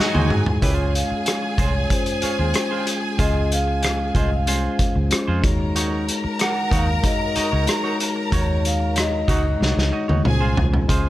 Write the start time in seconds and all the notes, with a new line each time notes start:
Already playing: G#3 D#4 F#4 G#4 C5 D#5 G#5
0.00 F#3 C4 D#4 F#4
0.14 D#2 D#4 F#4 C5, high tom
0.30 G#2, muted clean electric guitar stroke, mid tom
0.46 muted clean electric guitar stroke, floor tom
0.61 C#2 G#3 C#4 E4 F4 G4 G#4 A#4 B4 C#5 G#5, kick, closed hi-hat
0.71 F4 C#5
0.75 G#4 C5
0.95 F5, closed hi-hat
1.11 muted clean electric guitar stroke, muted fingered electric bass stroke
1.26 muted clean electric guitar stroke, cross-stick, closed hi-hat
1.42 muted clean electric guitar stroke
1.58 C2 F4 G#4 C5 C#5, kick, closed hi-hat
1.75 muted clean electric guitar stroke
1.90 G#3 C#4 F4 C5, muted clean electric guitar stroke, kick, closed hi-hat
2.06 muted clean electric guitar stroke, closed hi-hat
2.22 F4 G#4 C#5, muted fingered electric bass stroke, closed hi-hat
2.39 D#2 F4 G#4 C5
2.54 G#3 C#4 F4 C5, cross-stick, closed hi-hat
2.71 F4 G#4 C5
2.87 muted clean electric guitar stroke, closed hi-hat
3.03 muted clean electric guitar stroke
3.18 C#2 G#3 C#4 F4 G#4 C5 D#5, kick, closed hi-hat
3.52 F5, closed hi-hat
3.67 muted clean electric guitar stroke
3.83 muted clean electric guitar stroke, cross-stick, closed hi-hat
3.99 muted clean electric guitar stroke
4.15 C2 F4 G#4 C5 D#5, kick, closed hi-hat
4.31 F5, muted clean electric guitar stroke
4.46 G#3 C#4 F4 G#4 C5, closed hi-hat
4.79 muted fingered electric bass stroke, muted clean electric guitar stroke, kick, cross-stick, closed hi-hat
4.96 C#2, muted clean electric guitar stroke
5.10 G#3 C#4 F4 C5, muted clean electric guitar stroke, muted fingered electric bass stroke, cross-stick, closed hi-hat
5.27 F2 F4 G#4 C5
5.42 D#2 G#3 D#4 F#4 A#4 C#5 A#5, muted clean electric guitar stroke, kick, closed hi-hat
5.60 muted clean electric guitar stroke
5.76 D#4 F#4 C#5, closed hi-hat
6.08 closed hi-hat
6.24 muted clean electric guitar stroke, muted fingered electric bass stroke
6.39 F#5, muted clean electric guitar stroke, cross-stick, closed hi-hat
6.55 muted clean electric guitar stroke
6.71 D#2 D#4 F#4 C#5 F5, kick, closed hi-hat
6.88 muted clean electric guitar stroke
6.98 F5
7.03 G#3 D#4 F#4 C#5 D#5, muted clean electric guitar stroke, kick, closed hi-hat
7.20 muted clean electric guitar stroke
7.35 D#4 F#4 D#5, muted fingered electric bass stroke, closed hi-hat
7.52 C#2 D#4 F#4 C#5
7.66 G#3 D#4 F#4 C#5, cross-stick, closed hi-hat
7.84 D#4 F#4 C#5
8.00 muted clean electric guitar stroke, closed hi-hat
8.16 muted clean electric guitar stroke
8.31 D#2 G#3 D#4 F#4 C#5, kick, closed hi-hat
8.65 F5, closed hi-hat
8.80 muted clean electric guitar stroke
8.96 muted clean electric guitar stroke, cross-stick, closed hi-hat
9.00 D#5
9.12 muted clean electric guitar stroke
9.28 C#2 F#3 C#4 D#4 F#4 C#5, kick, closed hi-hat
9.44 muted clean electric guitar stroke
9.60 C2 G#3 D#4 F#4 C#5, muted clean electric guitar stroke, snare
9.76 C#2, muted clean electric guitar stroke, snare
9.92 D#4 F#4 D#5
10.08 D#2 D#4 F#4 C#5, high tom
10.23 C#2 G#3 C#4 F4 G#4 C5 G#5, muted clean electric guitar stroke, mid tom
10.41 C2 F4 G#4 C5
10.57 C2, muted clean electric guitar stroke, floor tom
10.73 muted clean electric guitar stroke, floor tom
10.88 C#2 G#3 C#4 F4 G#4 C5 G#5, kick, closed hi-hat